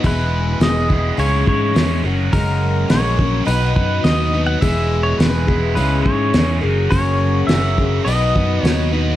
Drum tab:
HH |o-o-o-o-|o-o-o-o-|o-o-o-o-|o-o-o-o-|
SD |--o---o-|--o---o-|--o---o-|--o---o-|
BD |o--o-o--|o--o-o--|o--o-o--|o--o-o--|